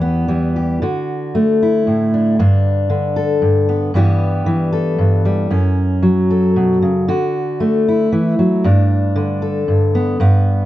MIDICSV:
0, 0, Header, 1, 2, 480
1, 0, Start_track
1, 0, Tempo, 536193
1, 739, Time_signature, 3, 2, 24, 8
1, 1212, Tempo, 519931
1, 9798, End_track
2, 0, Start_track
2, 0, Title_t, "Steel-string acoustic guitar"
2, 0, Program_c, 0, 25
2, 0, Note_on_c, 0, 40, 69
2, 0, Note_on_c, 0, 52, 64
2, 0, Note_on_c, 0, 67, 58
2, 13, Note_on_c, 0, 59, 55
2, 242, Note_off_c, 0, 52, 0
2, 252, Note_on_c, 0, 52, 57
2, 255, Note_on_c, 0, 55, 52
2, 490, Note_off_c, 0, 67, 0
2, 501, Note_on_c, 0, 67, 47
2, 708, Note_off_c, 0, 52, 0
2, 711, Note_off_c, 0, 67, 0
2, 733, Note_on_c, 0, 50, 76
2, 735, Note_off_c, 0, 40, 0
2, 738, Note_off_c, 0, 55, 0
2, 738, Note_off_c, 0, 59, 0
2, 740, Note_on_c, 0, 66, 62
2, 1207, Note_on_c, 0, 57, 65
2, 1455, Note_off_c, 0, 66, 0
2, 1463, Note_on_c, 0, 64, 57
2, 1689, Note_on_c, 0, 45, 62
2, 1936, Note_on_c, 0, 62, 54
2, 2139, Note_off_c, 0, 57, 0
2, 2143, Note_off_c, 0, 62, 0
2, 2167, Note_off_c, 0, 45, 0
2, 2171, Note_on_c, 0, 43, 78
2, 2174, Note_off_c, 0, 64, 0
2, 2176, Note_on_c, 0, 62, 70
2, 2624, Note_off_c, 0, 50, 0
2, 2635, Note_on_c, 0, 50, 64
2, 2882, Note_on_c, 0, 69, 67
2, 3106, Note_off_c, 0, 43, 0
2, 3117, Note_on_c, 0, 43, 63
2, 3367, Note_on_c, 0, 59, 55
2, 3572, Note_off_c, 0, 43, 0
2, 3575, Note_off_c, 0, 69, 0
2, 3577, Note_off_c, 0, 59, 0
2, 3578, Note_off_c, 0, 62, 0
2, 3599, Note_on_c, 0, 43, 76
2, 3600, Note_off_c, 0, 50, 0
2, 3609, Note_on_c, 0, 52, 58
2, 3614, Note_on_c, 0, 55, 66
2, 3620, Note_on_c, 0, 59, 66
2, 3627, Note_on_c, 0, 67, 74
2, 4071, Note_off_c, 0, 52, 0
2, 4082, Note_on_c, 0, 52, 74
2, 4321, Note_off_c, 0, 67, 0
2, 4325, Note_on_c, 0, 69, 61
2, 4552, Note_off_c, 0, 43, 0
2, 4564, Note_on_c, 0, 43, 66
2, 4800, Note_off_c, 0, 55, 0
2, 4811, Note_on_c, 0, 55, 60
2, 5013, Note_off_c, 0, 52, 0
2, 5015, Note_off_c, 0, 43, 0
2, 5016, Note_off_c, 0, 69, 0
2, 5044, Note_on_c, 0, 42, 82
2, 5045, Note_off_c, 0, 59, 0
2, 5047, Note_off_c, 0, 55, 0
2, 5049, Note_on_c, 0, 61, 65
2, 5525, Note_on_c, 0, 54, 71
2, 5782, Note_on_c, 0, 69, 55
2, 6020, Note_on_c, 0, 47, 65
2, 6258, Note_off_c, 0, 47, 0
2, 6261, Note_on_c, 0, 49, 59
2, 6478, Note_off_c, 0, 54, 0
2, 6480, Note_off_c, 0, 42, 0
2, 6483, Note_off_c, 0, 61, 0
2, 6500, Note_off_c, 0, 69, 0
2, 6501, Note_on_c, 0, 50, 73
2, 6504, Note_on_c, 0, 66, 64
2, 6506, Note_off_c, 0, 49, 0
2, 6981, Note_on_c, 0, 57, 64
2, 7232, Note_off_c, 0, 66, 0
2, 7241, Note_on_c, 0, 64, 57
2, 7459, Note_off_c, 0, 50, 0
2, 7463, Note_on_c, 0, 52, 71
2, 7703, Note_off_c, 0, 52, 0
2, 7706, Note_on_c, 0, 54, 63
2, 7915, Note_off_c, 0, 57, 0
2, 7942, Note_on_c, 0, 43, 82
2, 7947, Note_off_c, 0, 54, 0
2, 7949, Note_on_c, 0, 62, 68
2, 7952, Note_off_c, 0, 64, 0
2, 8415, Note_on_c, 0, 50, 77
2, 8659, Note_on_c, 0, 69, 59
2, 8886, Note_off_c, 0, 43, 0
2, 8897, Note_on_c, 0, 43, 70
2, 9146, Note_on_c, 0, 59, 59
2, 9348, Note_off_c, 0, 43, 0
2, 9348, Note_off_c, 0, 69, 0
2, 9350, Note_off_c, 0, 62, 0
2, 9353, Note_off_c, 0, 59, 0
2, 9373, Note_off_c, 0, 50, 0
2, 9377, Note_on_c, 0, 43, 81
2, 9385, Note_on_c, 0, 59, 68
2, 9798, Note_off_c, 0, 43, 0
2, 9798, Note_off_c, 0, 59, 0
2, 9798, End_track
0, 0, End_of_file